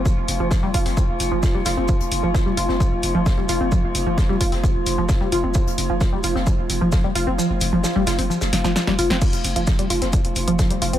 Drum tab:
CC |----------------|----------------|----------------|----------------|
HH |--o---oo--o---o-|-xo---o---o---o-|--o---oo--o---o-|-xo---o---o---o-|
SH |x-x-x-x-x-x-x-x-|x-x-x-x-x-x-x-x-|x-x-x-x-x-x-x-x-|x-x-x-x-x-x-x-x-|
SD |----o--o----o-o-|----o--o----o---|----o--o----o---|----o--o----o---|
BD |o---o-o-o---o---|o---o---o---o---|o---o-o-o---o---|o---o---o---o---|

CC |----------------|x---------------|
HH |--o---oo--o---o-|xxoxxxoxxxoxxxox|
SH |x-x-x-x-xx-xx-x-|x-x-x-x-x-x-x-x-|
SD |----o-o--ooooo-o|----o--o----o---|
BD |----------------|o---o---o---o---|